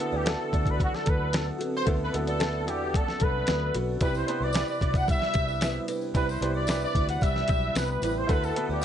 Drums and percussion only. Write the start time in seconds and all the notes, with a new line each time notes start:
0.00 closed hi-hat
0.26 snare, closed hi-hat
0.53 kick, closed hi-hat
0.66 kick, closed hi-hat
0.80 kick, closed hi-hat
0.94 snare
1.06 kick, closed hi-hat
1.33 snare, closed hi-hat
1.61 closed hi-hat
1.87 kick, closed hi-hat
2.14 closed hi-hat
2.27 closed hi-hat
2.40 snare, closed hi-hat
2.68 closed hi-hat
2.94 kick, closed hi-hat
3.08 snare
3.20 kick, closed hi-hat
3.47 snare, closed hi-hat
3.75 closed hi-hat
4.01 kick, closed hi-hat, tambourine
4.15 tambourine
4.28 closed hi-hat
4.53 snare, closed hi-hat, tambourine
4.68 tambourine
4.81 kick, closed hi-hat
4.94 kick, closed hi-hat, tambourine
5.08 kick, closed hi-hat, tambourine
5.22 snare
5.34 kick, closed hi-hat, tambourine
5.48 tambourine
5.61 snare, closed hi-hat, tambourine
5.88 closed hi-hat, tambourine
6.01 tambourine
6.15 kick, closed hi-hat, tambourine
6.29 tambourine
6.42 closed hi-hat
6.67 snare, closed hi-hat, tambourine
6.81 tambourine
6.95 kick, closed hi-hat
7.09 closed hi-hat, tambourine
7.21 kick, closed hi-hat, tambourine
7.36 snare
7.48 kick, closed hi-hat, tambourine
7.75 snare, closed hi-hat, tambourine
8.02 closed hi-hat, tambourine
8.29 kick, closed hi-hat, tambourine
8.44 tambourine
8.56 closed hi-hat
8.81 tambourine